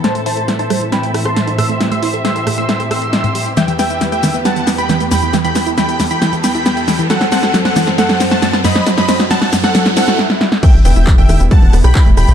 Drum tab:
CC |----------------|----------------|----------------|----------------|
HH |xxoxxxoxxxoxxxox|xxoxxxoxxxoxxxox|xxoxxxoxxxoxxxox|xxoxxxoxxxoxxxox|
SH |----------------|----------------|xxxxxxxxxxxxxxxx|xxxxxxxxxxxxxxxx|
CP |----------------|----------------|----------------|----------------|
SD |o---o-r-o-rro-r-|o---o-r-o-r-o---|o-o-o-o-o-o-o-o-|o-o-o-o-o-o-o-o-|
BD |----------------|----------------|----------------|----------------|

CC |----------------|----------------|x---------------|
HH |xxoxxxoxxxoxxxox|xxoxxxoxxxox----|xxoxxxoxxxoxxxox|
SH |xxxxxxxxxxxxxxxx|xxxxxxxxxxxx----|x-xxx-xxx-xxx-xx|
CP |----------------|----------------|----x-------x---|
SD |oooooooooooooooo|oooooooooooooooo|------r---rr--r-|
BD |----------------|----------------|o---o---o---o---|